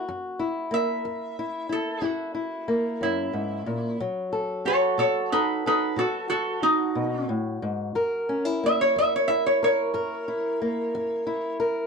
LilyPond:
<<
  \new Staff \with { instrumentName = "Resonator guitar played with a steel bar" } { \time 12/8 \key fis \mixolydian \tempo 4. = 61 r4 e''4. a'8 fis'4. e'4. | r4 <a' cis''>8 <a' cis''>8 <dis' b'>8 <dis' b'>8 <fis' a'>8 <fis' a'>8 dis'4 r4 | r4 e''16 cis''16 e''16 cis''16 e''16 cis''16 cis''2. r8 | }
  \new Staff \with { instrumentName = "Steel-string acoustic guitar" } { \time 12/8 \key fis \mixolydian << { ais8 e'8 ais4 e'8 e'8 e'8 e'8 ais2 | fis8 a'8 fis'4 a'8 a'8 fis'8 fis'8 fis'2 | ais'8 cis'16 e'16 ais4 e'8 ais'8 ais'8 e'8 ais4 e'8 ais'8 | } \\ { fis,4 r8 fis,4 r8 fis,4 r8 fis,8 gis,8 ais,8 | b,4 r8 b,4 r8 b,4 r8 b,8 a,8 gis,8 | fis,4 r8 fis,4 r8 fis,4 r8 fis,4 r8 | } >> }
>>